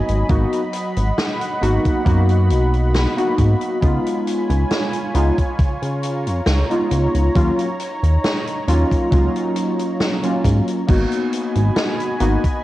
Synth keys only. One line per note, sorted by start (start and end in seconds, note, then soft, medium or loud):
0.00 0.24 A#3 medium
0.00 0.24 B3 medium
0.00 0.25 D#4 medium
0.00 0.25 F#4 medium
0.29 0.60 A#3 medium
0.29 0.60 B3 medium
0.29 0.61 D#4 medium
0.29 0.61 F#4 medium
1.61 2.01 A#3 medium
1.61 2.01 B3 medium
1.61 2.01 D#4 medium
1.61 2.01 F#4 loud
2.04 3.11 A#3 loud
2.04 3.12 B3 medium
2.04 3.12 D#4 medium
2.04 3.13 F#4 loud
3.17 3.77 A#3 medium
3.17 3.77 B3 medium
3.17 3.78 D#4 medium
3.17 3.78 F#4 loud
3.81 5.09 G#3 medium
3.81 5.10 B3 medium
3.81 5.10 D#4 medium
3.81 5.11 F4 medium
5.14 5.34 G#3 medium
5.14 5.35 B3 medium
5.14 5.35 D#4 medium
5.14 5.35 F4 loud
6.70 7.30 G#3 medium
6.70 7.30 B3 medium
6.70 7.30 D#4 medium
6.70 7.31 F4 medium
7.35 7.66 F#3 loud
7.35 7.66 A#3 medium
7.35 7.66 C#4 medium
7.35 7.67 F4 loud
8.67 9.07 F#3 medium
8.67 9.07 A#3 medium
8.67 9.07 C#4 medium
8.67 9.07 F4 loud
9.10 10.17 F#3 loud
9.10 10.18 A#3 medium
9.10 10.18 C#4 medium
9.10 10.19 F4 loud
10.23 10.83 F#3 medium
10.23 10.83 A#3 medium
10.23 10.84 C#4 medium
10.23 10.84 F4 medium
10.87 12.15 A#3 medium
10.87 12.16 B3 medium
10.87 12.16 D#4 medium
10.87 12.17 F#4 loud
12.20 12.40 A#3 medium
12.20 12.40 B3 medium
12.20 12.41 D#4 medium
12.20 12.41 F#4 loud